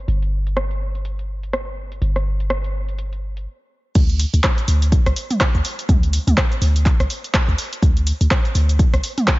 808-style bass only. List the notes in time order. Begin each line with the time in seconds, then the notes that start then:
0.08 G1
2.02 G1
3.95 D2
4.34 D2
4.68 D2
5.06 C2
5.55 D2
5.89 D2
6.27 D2
6.62 D2
7.00 C2
7.48 D2
7.82 D2
8.21 D2
8.55 D2
8.93 C2